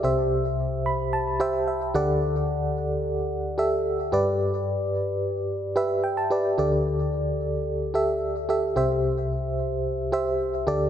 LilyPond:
<<
  \new Staff \with { instrumentName = "FM electric piano" } { \time 4/4 \key c \lydian \tempo 4 = 110 << { r4. b''8 a''8 g''8 e''8 fis''8 | r1 | r2. g''16 a''8. | r1 |
r1 | } \\ { <g' c'' e''>4.~ <g' c'' e''>16 r8. <g' c'' e''>4 <g' a' d''>8~ | <g' a' d''>4~ <g' a' d''>16 r4 r16 <g' a' e''>4 <g' b' d''>8~ | <g' b' d''>4~ <g' b' d''>16 r4 r16 <g' b' e''>4 <g' b' d''>8 | <g' a' d''>4.~ <g' a' d''>16 r8. <g' a' e''>4 <g' a' e''>8 |
<g' c'' e''>4.~ <g' c'' e''>16 r8. <g' c'' e''>4 <g' a' d''>8 | } >> }
  \new Staff \with { instrumentName = "FM electric piano" } { \clef bass \time 4/4 \key c \lydian <c, c>2.~ <c, c>8 <d, d>8~ | <d, d>2.~ <d, d>8 g,8~ | g,2.~ g,8 r8 | <d, d>1 |
<c, c>2.~ <c, c>8 <d, d>8 | }
>>